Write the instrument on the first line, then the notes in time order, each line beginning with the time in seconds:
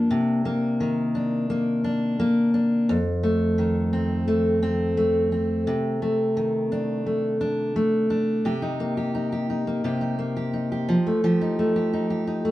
steel-string acoustic guitar
Already playing: G2 F3 A#3 D4
0.11 C3
0.45 A#3
0.80 D#3
1.15 D4
1.50 A#3
1.84 D4
2.20 A#3
2.54 D4
2.89 F2
3.23 A3
3.58 D#3
3.93 C4
4.28 A3
4.63 C4
4.97 A3
5.32 C4
5.67 C3
6.02 A3
6.37 D#3
6.72 D4
7.07 A3
7.41 D4
7.76 A3
8.10 D4
8.45 C3 G4
8.62 D#4
8.80 A#3
8.97 G4
9.15 D#4
9.32 G4
9.50 D#4
9.67 A#3
9.84 C3 G4
10.01 D#4
10.19 A#3
10.36 G4
10.53 D#4
10.72 G4
10.89 F3
11.07 A3
11.24 F3 G4
11.41 D#4
11.59 A3
11.76 G4
11.93 D#4
12.10 G4
12.27 D#4
12.45 A3